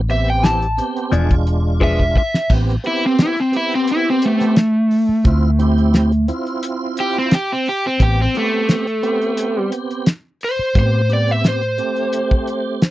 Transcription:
Already playing: fingered electric bass A1
0.09 tonewheel organ B3 C4 G4, overdriven electric guitar E5, closed hi-hat
0.30 overdriven electric guitar G5
0.43 clean electric guitar E3 C4 E4 G4, overdriven electric guitar A5, snare, closed hi-hat
0.62 closed hi-hat
0.77 tonewheel organ B3 C4 G4, closed hi-hat
0.97 closed hi-hat
1.11 fingered electric bass E1, clean electric guitar F3 B3 D4 G#4, tonewheel organ G#3 D4 F4, closed hi-hat
1.31 kick, closed hi-hat
1.47 closed hi-hat
1.80 clean electric guitar F3 B3 D4 G#4, overdriven electric guitar E5, kick
1.99 kick
2.15 overdriven electric guitar E5, kick
2.34 snare
2.50 fingered electric bass A1, tonewheel organ B3 C4 G4, kick, crash
2.69 snare
2.83 tonewheel organ B3 C4 G4, overdriven electric guitar E4, closed hi-hat
3.06 overdriven electric guitar C4
3.19 overdriven electric guitar E4, snare, closed hi-hat
3.37 overdriven electric guitar C4, closed hi-hat
3.52 tonewheel organ B3 C4 G4, closed hi-hat
3.57 overdriven electric guitar E4
3.72 overdriven electric guitar C4, closed hi-hat
3.88 overdriven electric guitar E4, closed hi-hat
4.10 overdriven electric guitar C4
4.22 overdriven electric guitar A3, closed hi-hat
4.40 snare, closed hi-hat
4.56 snare, closed hi-hat
4.91 open hi-hat
5.09 muted fingered electric bass stroke
5.24 fingered electric bass D2, tonewheel organ C4 E4 F4, kick, closed hi-hat
5.59 tonewheel organ C4 E4 G4, closed hi-hat
5.78 closed hi-hat
5.94 snare, closed hi-hat
6.12 closed hi-hat
6.28 tonewheel organ C4 E4 F4, closed hi-hat
6.47 closed hi-hat
6.63 closed hi-hat
6.97 overdriven electric guitar G4, closed hi-hat
7.18 overdriven electric guitar C4
7.31 overdriven electric guitar G4, snare, closed hi-hat
7.52 overdriven electric guitar C4
7.66 overdriven electric guitar G4, open hi-hat
7.84 overdriven electric guitar C4, closed hi-hat
7.99 fingered electric bass A1, tonewheel organ B3 C4 G4, overdriven electric guitar G4, kick, closed hi-hat
8.22 overdriven electric guitar C4
8.34 overdriven electric guitar A3, tonewheel organ B3 C4 G4, closed hi-hat
8.69 snare, closed hi-hat
8.87 closed hi-hat
9.03 tonewheel organ B3 C4 G4, closed hi-hat
9.22 closed hi-hat
9.37 closed hi-hat
9.72 closed hi-hat
9.90 closed hi-hat
10.06 snare, closed hi-hat
10.41 overdriven electric guitar C5, open hi-hat
10.59 muted fingered electric bass stroke
10.75 fingered electric bass A2, tonewheel organ B3 C4 G4, overdriven electric guitar C5, kick, closed hi-hat
11.09 tonewheel organ B3 C4 G4, closed hi-hat
11.13 overdriven electric guitar D5
11.28 overdriven electric guitar E5, closed hi-hat
11.44 overdriven electric guitar C5, snare, closed hi-hat
11.63 closed hi-hat
11.78 tonewheel organ A3 C4 G4, closed hi-hat
11.96 closed hi-hat
12.13 closed hi-hat
12.31 kick
12.47 closed hi-hat
12.82 snare, closed hi-hat

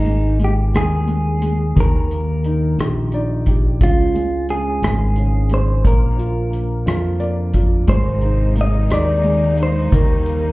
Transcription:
Already playing: fingered electric bass G#1, upright piano G#3, clean electric guitar D#4
0.05 upright piano G#3, closed hi-hat
0.39 upright piano G#3, closed hi-hat
0.44 clean electric guitar G4
0.74 fingered electric bass D#2, upright piano G#3, clean electric guitar G#4, cross-stick, closed hi-hat
1.07 upright piano G#3, closed hi-hat
1.42 upright piano G#3, closed hi-hat
1.75 fingered electric bass D#2, upright piano D#3, kick, closed hi-hat
1.80 clean electric guitar A#4
2.11 upright piano A#3, closed hi-hat
2.44 upright piano D#4, closed hi-hat
2.78 fingered electric bass A#1, upright piano G4, cross-stick, closed hi-hat
3.12 upright piano D#4 D5, closed hi-hat
3.46 upright piano G4, kick, closed hi-hat
3.81 fingered electric bass C#2, upright piano C#3, clean electric guitar F4, kick, closed hi-hat
4.14 upright piano G#3, closed hi-hat
4.49 upright piano C#3, clean electric guitar G#4, closed hi-hat
4.82 fingered electric bass G#1, upright piano G#3, cross-stick, closed hi-hat
5.16 upright piano C#3, closed hi-hat
5.50 upright piano G#3, closed hi-hat
5.54 clean electric guitar C5
5.83 fingered electric bass A#1, upright piano A#3, clean electric guitar A#4, kick, closed hi-hat
6.17 upright piano F4, closed hi-hat
6.51 upright piano A#3, closed hi-hat
6.86 fingered electric bass F2, upright piano F4, cross-stick, closed hi-hat
7.20 upright piano A#3 D5, closed hi-hat
7.54 upright piano F4, kick, closed hi-hat
7.87 fingered electric bass G#1, string section C3 D#3 G#3 A#3 D#4, upright piano G#3, clean electric guitar C5, kick, closed hi-hat
8.21 upright piano D#4, closed hi-hat
8.56 upright piano G#3, closed hi-hat
8.61 clean electric guitar D#5
8.90 fingered electric bass D#2, upright piano D#4, clean electric guitar D5, cross-stick, closed hi-hat
9.23 upright piano G#3, closed hi-hat
9.58 upright piano D#4, closed hi-hat
9.63 clean electric guitar C5
9.92 fingered electric bass D#2, upright piano D#3, string section G3, clean electric guitar A#4, kick, closed hi-hat
10.26 upright piano A#3, closed hi-hat

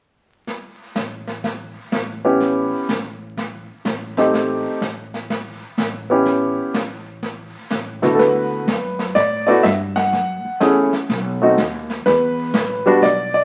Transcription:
0.47 brush sweep, kick, snare
0.95 upright bass A1, kick, snare, hi-hat pedal
1.27 snare
1.44 brush sweep, kick, snare
1.92 upright bass A1, kick, snare, hi-hat pedal
2.25 grand piano B3 C#4 E4 G4
2.40 brush sweep, kick, snare
2.88 upright bass A1, kick, snare, hi-hat pedal
3.37 brush sweep, kick, snare
3.85 upright bass A1, kick, snare, hi-hat pedal
4.17 grand piano A3 C4 D#4 G4, snare
4.34 brush sweep, kick, snare
4.81 upright bass A1, kick, snare, hi-hat pedal
5.14 snare
5.30 brush sweep, kick, snare
5.77 upright bass A1, kick, snare, hi-hat pedal
6.10 grand piano B3 C#4 E4 G4
6.25 brush sweep, kick, snare
6.74 upright bass A1, kick, snare, hi-hat pedal
7.22 brush sweep, kick, snare
7.70 upright bass A1, kick, snare, hi-hat pedal
8.02 grand piano D3 A3 B3 E4 F#4, snare
8.15 grand piano A4
8.19 upright bass D2, grand piano B4, brush sweep, kick, snare
8.67 upright bass F#2, kick, snare, hi-hat pedal
8.99 snare
9.15 upright bass A2, grand piano D5, brush sweep, kick, snare
9.47 grand piano A3 B3 E4 F#4 D5
9.63 upright bass G2, grand piano E5, kick, snare, hi-hat pedal
9.96 grand piano F#5, snare
10.13 upright bass F#2, brush sweep, kick, snare
10.45 muted upright bass stroke
10.60 upright bass E2, grand piano A3 C#4 E4 G#4, kick, snare, hi-hat pedal
10.93 muted upright bass stroke, snare
11.09 upright bass B1, brush sweep, kick, snare
11.42 grand piano A3 C4 D#4 F#4
11.58 upright bass D#2, kick, snare, hi-hat pedal
11.90 snare
12.06 upright bass E2, grand piano B4, brush sweep, kick, snare
12.54 upright bass A1, kick, snare, hi-hat pedal
12.86 grand piano G3 B3 D4 F#4
13.02 upright bass B1, grand piano D5, brush sweep, kick, snare
13.34 grand piano D5

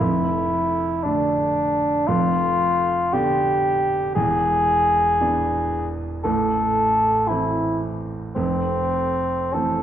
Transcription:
0.00 grand piano F1 F2, bassoon E4
1.04 grand piano D3 A3 D4, bassoon D4
2.08 grand piano F1 F2, bassoon F4
3.12 grand piano D3 B3 D4, bassoon G4
4.15 grand piano E1 E2, bassoon G#4
5.21 grand piano E3 B3 D4
6.24 grand piano A1 A2, bassoon A4
7.28 grand piano E3 A3 C4, bassoon E4
8.35 grand piano F1 F2, bassoon C4
9.54 grand piano E3 A3 C4, bassoon A4

